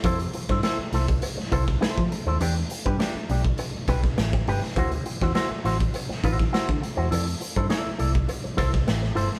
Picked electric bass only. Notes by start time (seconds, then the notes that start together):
0.04 F2
0.49 G2
0.79 muted picked electric bass stroke
0.92 C2
1.37 muted picked electric bass stroke
1.52 C2
1.98 F3
2.27 D#2
2.40 E2
2.86 G2
3.15 muted picked electric bass stroke
3.29 B1
3.75 muted picked electric bass stroke
3.88 B1
4.18 A1
4.48 G1
4.76 D2
5.22 E2
5.51 muted picked electric bass stroke
5.65 A1
6.10 muted picked electric bass stroke
6.24 A1
6.69 D3
6.98 E2
7.12 F2
7.57 G2
7.87 muted picked electric bass stroke
8.00 C2
8.45 muted picked electric bass stroke
8.58 C2
8.88 A1
9.17 G1